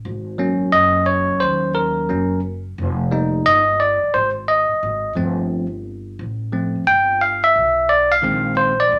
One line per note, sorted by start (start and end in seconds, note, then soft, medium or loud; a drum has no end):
0.05 0.70 G#1 loud
0.38 2.08 F#3 medium
0.38 2.08 A#3 medium
0.38 2.09 C#4 medium
0.72 1.27 F#1 medium
0.72 1.05 D#5 loud
1.06 1.42 C#5 medium
1.30 muted upright bass stroke soft
1.40 2.06 D#2 loud
1.40 1.73 C5 medium
1.75 2.39 A#4 medium
2.09 2.75 F#1 medium
2.09 2.40 F#3 soft
2.09 2.40 A#3 soft
2.09 2.40 C#4 medium
2.78 3.43 F1 loud
3.11 3.61 G3 medium
3.11 3.61 A#3 medium
3.11 3.62 D#4 medium
3.46 4.00 G1 medium
3.46 3.81 D#5 loud
3.80 4.15 D5 medium
4.03 muted upright bass stroke soft
4.14 4.68 G#1 loud
4.14 4.29 C5 loud
4.48 5.12 D#5 medium
4.71 muted upright bass stroke soft
4.83 5.15 G#1 loud
5.15 6.15 G1 medium
5.15 5.65 F3 medium
5.15 5.66 A3 medium
5.15 5.66 C4 medium
6.19 6.73 A1 medium
6.53 6.83 F3 soft
6.53 6.83 A3 soft
6.53 6.84 C4 medium
6.75 muted upright bass stroke soft
6.87 7.52 G1 loud
6.87 7.22 G5 loud
7.21 7.42 F5 medium
7.44 7.91 E5 loud
7.55 8.20 B1 medium
7.89 8.12 D5 loud
8.12 8.54 F5 loud
8.22 8.88 A#1 loud
8.22 8.72 D#3 medium
8.22 8.72 G#3 soft
8.22 8.73 C4 medium
8.57 8.80 C5 medium
8.80 8.99 D5 medium
8.91 8.99 D2 medium